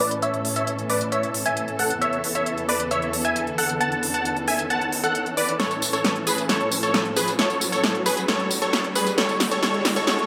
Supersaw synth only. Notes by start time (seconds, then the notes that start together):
0.00 B4 D5
0.23 C#5 E5
0.56 C#5 E5
0.90 B4 D5
1.12 C#5 E5
1.46 E5 G#5
1.79 A4 F#5
2.02 C#5 E5
2.35 C#5 E5
2.69 B4 D5
2.91 C#5 E5
3.25 E5 G#5
3.58 A4 F#5
3.80 F#5 A5
4.14 F#5 A5
4.48 E5 G#5
4.70 F#5 A5
5.04 A4 F#5
5.37 B4 D5
5.60 A4 C#5
5.93 A4 C#5
6.27 G#4 B4
6.49 A4 C#5
6.83 A4 C#5
7.17 G#4 B4
7.39 A4 C#5
7.72 A4 C#5
8.06 G#4 B4
8.28 A4 C#5
8.62 A4 C#5
8.96 G#4 B4
9.18 A4 C#5
9.51 A4 C#5
9.63 A4 C#5
9.96 A4 C#5
10.07 A4 C#5